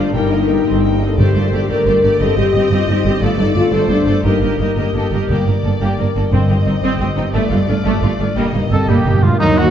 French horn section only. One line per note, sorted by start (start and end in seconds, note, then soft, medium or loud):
0.00 0.15 D4 medium
0.14 0.99 D#4 medium
1.00 1.17 A4 medium
1.18 1.35 G4 medium
1.35 1.43 F4 medium
1.52 1.69 G4 medium
1.69 2.19 A#4 medium
2.19 2.37 A4 medium
2.37 2.70 G4 medium
2.72 2.88 F4 medium
2.90 3.06 D#4 medium
3.07 3.14 G4 medium
3.23 3.30 F4 medium
3.38 3.55 D#4 medium
3.56 3.73 F4 medium
3.74 3.91 A4 medium
3.91 4.25 D4 medium
4.25 4.77 D#4 medium
8.72 8.88 A4 medium
8.88 9.23 G4 medium
9.23 9.40 F4 medium
9.40 9.57 D#4 medium
9.60 9.70 F#4 medium